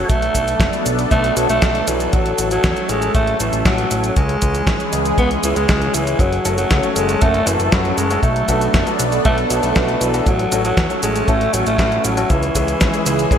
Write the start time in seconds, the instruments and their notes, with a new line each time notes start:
Already playing: alto saxophone F#3, analog synth pad F#3 A4
0.09 analog synth bass B1, alto saxophone A3, analog synth pad B3 D4, kick, closed hi-hat, cabasa
0.22 closed hi-hat
0.35 analog synth bass B1, kick, closed hi-hat, cabasa
0.48 closed hi-hat, cabasa
0.60 analog synth bass F#1, kick, snare, closed hi-hat, cabasa
0.73 closed hi-hat, cabasa
0.86 analog synth bass B1, closed hi-hat, cabasa
0.99 closed hi-hat, cabasa
1.11 analog synth bass B1, alto saxophone A3, kick, closed hi-hat, cabasa
1.24 closed hi-hat
1.37 analog synth bass B1, alto saxophone F#3, closed hi-hat, cabasa
1.49 analog synth bass B1, alto saxophone A3, closed hi-hat, cabasa
1.62 analog synth bass B1, kick, snare, closed hi-hat, cabasa
1.75 closed hi-hat
1.88 analog synth bass B1, alto saxophone E3, closed hi-hat, cabasa
2.00 closed hi-hat, cabasa
2.13 analog synth bass A1, alto saxophone F#3, analog synth pad A3 C#4, kick, closed hi-hat, cabasa
2.26 closed hi-hat
2.38 analog synth bass A1, closed hi-hat, cabasa
2.51 alto saxophone F#3, closed hi-hat, cabasa
2.64 analog synth bass E2, kick, snare, closed hi-hat, cabasa
2.77 closed hi-hat, cabasa
2.89 analog synth bass A1, alto saxophone G#3, closed hi-hat, cabasa
3.02 closed hi-hat, cabasa
3.15 analog synth bass A1, alto saxophone A3, kick, closed hi-hat, cabasa
3.27 closed hi-hat
3.40 analog synth bass A1, alto saxophone E3, closed hi-hat, cabasa
3.53 analog synth bass A1, closed hi-hat, cabasa
3.65 analog synth bass A1, alto saxophone F#3, kick, snare, closed hi-hat, cabasa
3.78 closed hi-hat
3.91 analog synth bass A1, closed hi-hat, cabasa
4.04 closed hi-hat, cabasa
4.16 analog synth bass C#2, analog synth pad E3 G#3 G#4, alto saxophone G#3, kick, closed hi-hat, cabasa
4.29 closed hi-hat
4.42 analog synth bass C#2, kick, closed hi-hat, cabasa
4.55 closed hi-hat, cabasa
4.67 analog synth bass G#1, kick, snare, closed hi-hat, cabasa
4.80 closed hi-hat, cabasa
4.93 analog synth bass C#2, closed hi-hat, cabasa
5.05 closed hi-hat, cabasa
5.18 analog synth bass C#2, alto saxophone B3, kick, closed hi-hat, cabasa
5.31 closed hi-hat
5.44 analog synth bass C#2, alto saxophone E3, closed hi-hat, cabasa
5.56 analog synth bass C#2, alto saxophone G#3, closed hi-hat, cabasa
5.69 analog synth bass C#2, kick, snare, closed hi-hat, cabasa
5.82 closed hi-hat
5.94 analog synth bass C#2, alto saxophone E3, closed hi-hat, cabasa
6.07 closed hi-hat, cabasa
6.19 analog synth bass F#1, alto saxophone F#3, analog synth pad F#3 A3 A4, kick, closed hi-hat, cabasa
6.32 closed hi-hat
6.45 analog synth bass F#1, grand piano A3 C#4 F#4 A4, closed hi-hat, cabasa
6.58 alto saxophone F#3, closed hi-hat, cabasa
6.71 analog synth bass C#2, kick, snare, closed hi-hat, cabasa
6.83 grand piano A3 C#4 F#4 A4, closed hi-hat, cabasa
6.96 analog synth bass F#1, alto saxophone G#3, closed hi-hat, cabasa
7.09 closed hi-hat, cabasa
7.21 analog synth bass F#1, alto saxophone A3, grand piano A3 C#4 F#4 A4, kick, closed hi-hat, cabasa
7.34 closed hi-hat
7.47 analog synth bass F#1, alto saxophone E3, closed hi-hat, cabasa
7.60 analog synth bass F#1, closed hi-hat, cabasa
7.72 analog synth bass F#1, alto saxophone F#3, grand piano A3 C#4 F#4 B4, kick, snare, closed hi-hat, cabasa
7.85 closed hi-hat
7.98 analog synth bass F#1, alto saxophone G#3, closed hi-hat, cabasa
8.11 grand piano A3 C#4 F#4 A4, closed hi-hat, cabasa
8.23 analog synth bass B1, alto saxophone A3, analog synth pad B3 D4, kick, closed hi-hat, cabasa
8.36 closed hi-hat
8.49 analog synth bass B1, grand piano B3 D4 F#4 A4, kick, closed hi-hat, cabasa
8.61 closed hi-hat, cabasa
8.74 analog synth bass F#1, kick, snare, closed hi-hat, cabasa
8.87 grand piano B3 D4 F#4 A4, closed hi-hat, cabasa
9.00 analog synth bass B1, closed hi-hat, cabasa
9.12 closed hi-hat, cabasa
9.25 analog synth bass B1, alto saxophone A3, grand piano B3 D4 F#4 A4, kick, closed hi-hat, cabasa
9.38 closed hi-hat
9.50 analog synth bass B1, alto saxophone F#3, closed hi-hat, cabasa
9.63 analog synth bass B1, alto saxophone A3, closed hi-hat, cabasa
9.76 analog synth bass B1, grand piano B3 D4 F#4 B4, kick, snare, closed hi-hat, cabasa
9.89 closed hi-hat
10.01 analog synth bass B1, alto saxophone E3, closed hi-hat, cabasa
10.14 grand piano B3 D4 F#4 A4, closed hi-hat, cabasa
10.27 analog synth bass A1, alto saxophone F#3, analog synth pad A3 C#4, kick, closed hi-hat, cabasa
10.39 closed hi-hat
10.52 analog synth bass A1, grand piano A3 C#4 F#4 A4, closed hi-hat, cabasa
10.65 alto saxophone F#3, closed hi-hat, cabasa
10.77 analog synth bass E2, kick, snare, closed hi-hat, cabasa
10.90 grand piano A3 C#4 F#4 A4, closed hi-hat, cabasa
11.03 analog synth bass A1, alto saxophone G#3, closed hi-hat, cabasa
11.16 closed hi-hat, cabasa
11.28 analog synth bass A1, grand piano A3 C#4 F#4 A4, alto saxophone A3, kick, closed hi-hat, cabasa
11.41 closed hi-hat
11.54 analog synth bass A1, alto saxophone F#3, closed hi-hat, cabasa
11.66 analog synth bass A1, alto saxophone A3, closed hi-hat, cabasa
11.78 analog synth bass A1, grand piano A3 C#4 F#4 B4, kick, snare, closed hi-hat, cabasa
11.92 closed hi-hat
12.05 analog synth bass A1, alto saxophone F#3, closed hi-hat, cabasa
12.17 grand piano A3 C#4 F#4 A4, closed hi-hat, cabasa
12.30 analog synth bass C#2, alto saxophone E3, analog synth pad E3 G#3 G#4, kick, closed hi-hat, cabasa
12.43 closed hi-hat, cabasa
12.55 analog synth bass C#2, grand piano G#3 C#4 E4 G#4, kick, closed hi-hat, cabasa
12.68 closed hi-hat, cabasa
12.81 analog synth bass G#1, kick, snare, closed hi-hat, cabasa
12.94 grand piano G#3 C#4 E4 G#4, closed hi-hat, cabasa
13.06 analog synth bass C#2, alto saxophone E3, closed hi-hat, cabasa
13.19 closed hi-hat, cabasa
13.31 analog synth bass G#1, grand piano G#3 C#4 E4 G#4, kick, closed hi-hat, cabasa